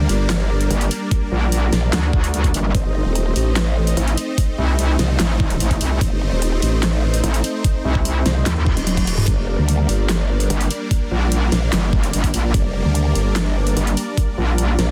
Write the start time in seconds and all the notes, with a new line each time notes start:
Already playing: G3 A#3 D4 A#4 D5
0.09 G1, open hi-hat
0.30 snare, clap, closed hi-hat
0.61 closed hi-hat
0.71 G1, closed hi-hat
0.81 closed hi-hat
0.91 open hi-hat
1.11 kick, closed hi-hat
1.32 A#1
1.52 closed hi-hat
1.73 A#1, snare, open hi-hat
1.93 D2, snare, clap, closed hi-hat
2.13 kick
2.24 closed hi-hat
2.34 closed hi-hat
2.44 kick, closed hi-hat
2.54 G1, open hi-hat
2.75 A1 A3 C4 D#4 C5 D#5, kick, closed hi-hat
2.85 G1
3.05 D#1
3.15 closed hi-hat
3.36 A1, open hi-hat
3.56 snare, clap, closed hi-hat
3.87 closed hi-hat
3.97 A1, closed hi-hat
4.08 closed hi-hat
4.18 open hi-hat
4.38 kick, closed hi-hat
4.58 C2
4.79 closed hi-hat
4.99 C2, snare, open hi-hat
5.20 A1, snare, clap, closed hi-hat
5.40 kick
5.50 closed hi-hat
5.60 A1, closed hi-hat
5.71 kick, closed hi-hat
5.81 C2, open hi-hat
6.01 A1, kick, closed hi-hat
6.12 G1
6.32 D#1
6.42 closed hi-hat
6.62 A1, open hi-hat
6.83 snare, clap, closed hi-hat
7.14 closed hi-hat
7.24 A1, closed hi-hat
7.34 closed hi-hat
7.44 open hi-hat
7.64 kick, closed hi-hat
7.85 C2
7.95 kick
8.05 closed hi-hat
8.26 C2, snare, open hi-hat
8.46 D#2, snare, clap, closed hi-hat, reverse cymbal
8.66 kick
8.77 D#1, closed hi-hat
8.87 closed hi-hat, high tom
8.97 kick, closed hi-hat, high tom
9.07 open hi-hat
9.18 mid tom
9.28 G1 G3 A#3 D4 A#4 D5, kick, closed hi-hat
9.38 F1
9.59 D2
9.69 closed hi-hat
9.89 G1, open hi-hat
10.09 snare, clap, closed hi-hat
10.40 closed hi-hat
10.50 G1, closed hi-hat
10.61 closed hi-hat
10.71 open hi-hat
10.91 kick, closed hi-hat
11.11 A#1
11.32 closed hi-hat
11.52 A#1, snare, open hi-hat
11.73 G1, snare, clap, closed hi-hat
11.93 kick
12.03 closed hi-hat
12.13 G1, closed hi-hat
12.24 kick, closed hi-hat
12.34 A#1, open hi-hat
12.54 G1, kick, closed hi-hat
12.65 F1
12.85 D2
12.95 closed hi-hat
13.15 G1, open hi-hat
13.36 snare, clap, closed hi-hat
13.67 closed hi-hat
13.77 G1, closed hi-hat
13.87 closed hi-hat
13.97 open hi-hat
14.17 kick, closed hi-hat
14.38 A#1
14.58 closed hi-hat
14.79 A#1, snare, open hi-hat